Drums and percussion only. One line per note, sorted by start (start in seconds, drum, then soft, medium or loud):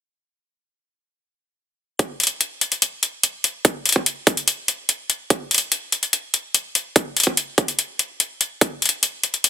1.99 kick loud
1.99 closed hi-hat medium
2.20 closed hi-hat soft
2.23 closed hi-hat medium
2.27 closed hi-hat medium
2.41 closed hi-hat medium
2.61 closed hi-hat medium
2.72 closed hi-hat soft
2.82 closed hi-hat medium
3.03 closed hi-hat medium
3.23 closed hi-hat medium
3.44 closed hi-hat medium
3.65 kick loud
3.65 closed hi-hat medium
3.86 closed hi-hat soft
3.89 closed hi-hat medium
3.92 kick medium
3.92 closed hi-hat medium
4.06 closed hi-hat medium
4.27 kick loud
4.27 closed hi-hat medium
4.37 closed hi-hat soft
4.48 closed hi-hat medium
4.68 closed hi-hat medium
4.89 closed hi-hat medium
5.10 closed hi-hat medium
5.30 kick loud
5.30 closed hi-hat medium
5.51 closed hi-hat soft
5.54 closed hi-hat medium
5.58 closed hi-hat medium
5.72 closed hi-hat medium
5.92 closed hi-hat medium
6.03 closed hi-hat soft
6.13 closed hi-hat medium
6.34 closed hi-hat medium
6.54 closed hi-hat medium
6.75 closed hi-hat medium
6.96 kick loud
6.96 closed hi-hat medium
7.17 closed hi-hat soft
7.20 closed hi-hat medium
7.23 kick medium
7.23 closed hi-hat medium
7.37 closed hi-hat medium
7.58 kick loud
7.58 closed hi-hat soft
7.68 closed hi-hat soft
7.79 closed hi-hat medium
7.99 closed hi-hat soft
8.20 closed hi-hat medium
8.41 closed hi-hat soft
8.61 kick loud
8.61 closed hi-hat medium
8.82 closed hi-hat soft
8.86 closed hi-hat medium
8.89 closed hi-hat medium
9.03 closed hi-hat medium
9.23 closed hi-hat soft
9.34 closed hi-hat soft
9.44 closed hi-hat medium